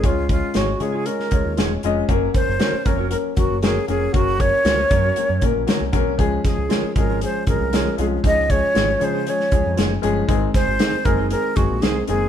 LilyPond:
<<
  \new Staff \with { instrumentName = "Flute" } { \time 4/4 \key des \major \tempo 4 = 117 f'8 f'8 ges'8 aes'8 bes'4 r4 | r8 c''4 bes'8 bes'8 ges'8 aes'8 aes'8 | ges'8 des''2 r4. | r8 aes'4 bes'8 c''8 bes'4 aes'8 |
ees''8 des''4 c''8 des''4 r4 | r8 c''4 bes'8 bes'8 ges'8 aes'8 aes'8 | }
  \new Staff \with { instrumentName = "Clean electric guitar" } { \time 4/4 \key des \major r4 <f' aes' des''>16 r8 <f' aes' des''>16 r4 <f' aes' des''>16 r8. | r4 <ges' bes' des''>16 r8 <ges' bes' des''>16 r4 <ges' bes' des''>16 r8. | r4 <ges' bes' des''>16 r8 <ges' bes' des''>16 r4 <ges' bes' des''>16 r8. | r4 <f' aes' des''>16 r8 <f' aes' des''>16 r4 <f' aes' des''>16 r8. |
r4 <f' aes' des''>16 r8 <f' aes' des''>16 r4 <f' aes' des''>16 r8. | r4 <ees' aes' c''>16 r8 <ees' aes' c''>16 r4 <ees' aes' c''>16 r8. | }
  \new Staff \with { instrumentName = "Grand piano" } { \time 4/4 \key des \major <aes des' f' des''>8 <aes des' f' des''>8 <aes des' f' des''>8 <aes des' f' des''>8 <aes des' f' des''>8 <aes des' f' des''>8 <aes des' f' des''>8 <aes des' f' ees''>8 | <ges bes des' bes'>8 <ges bes des' bes'>8 <ges bes des' bes'>8 <ges bes des' des''>8 <ges bes des' bes'>8 <ges bes des' bes'>8 <ges bes des' bes'>8 <ges bes des' bes'>8 | <ges bes des' bes'>8 <ges bes des' bes'>8 <ges bes des' c''>8 <ges bes des' bes'>8 <ges bes des' bes'>8 <ges bes des' bes'>8 <ges bes des' bes'>8 <ges bes des' bes'>8 | <f aes des' aes'>8 <f aes des' aes'>8 <f aes des' bes'>8 <f aes des' aes'>8 <f aes des' aes'>8 <f aes des' aes'>8 <f aes des' aes'>8 <f aes des' f'>8 |
<f aes des' ees'>8 <f aes des' aes'>8 <f aes des' aes'>8 <f aes des' aes'>8 <f aes des' aes'>8 <f aes des' aes'>8 <f aes des' aes'>8 <f aes des' aes'>8 | <ees aes c' aes'>8 <ees aes c' aes'>8 <ees aes c' aes'>8 <ees aes c' aes'>8 <ees aes c' aes'>8 <ees aes c' aes'>8 <ees aes c' aes'>8 <ees aes c' aes'>8 | }
  \new Staff \with { instrumentName = "Picked electric bass" } { \clef bass \time 4/4 \key des \major des,4 aes,,8 des8. r16 des,16 ees,16 fes,,8 f,,8 | ges,,8 r16 ges,,16 r8 f,,8. r16 f,,16 ges,,8. f,,8 | ges,,4 des,8 ges,8 r16 ges,16 bes,16 bes,,16 r16 c,16 ces,16 c,16 | des,8 r16 des,16 r8 aes,,8. r16 aes,,16 c,8. c,8 |
des,4 aes,,8 des8. r16 des,16 f,16 ges,,8 g,,8 | aes,,8 r16 aes,,16 r8 ges,,8. r16 ges,,16 bes,,16 c,8 ges,,8 | }
  \new DrumStaff \with { instrumentName = "Drums" } \drummode { \time 4/4 <hh bd>8 <hh bd>8 <hh sn>8 hh8 hh16 sn16 <hh bd>8 <hh sn>8 hh8 | <hh bd>8 <hh bd>8 <hh sn>8 <hh bd>8 hh8 <hh bd>8 <hh sn>8 hh8 | <hh bd>8 <hh bd>8 <hh sn>8 <hh bd>8 hh8 <hh bd>8 <hh sn>8 <hh bd>8 | <hh bd>8 <hh bd sn>8 <hh sn>8 <hh bd>8 hh8 <hh bd>8 <hh sn>8 hh8 |
<hh bd>8 <hh bd>8 <hh sn>8 hh8 hh16 sn16 <hh bd>8 <hh sn>8 hh8 | <hh bd>8 <hh bd sn>8 <hh sn>8 <hh bd>8 hh8 <hh bd>8 <hh sn>8 hh8 | }
>>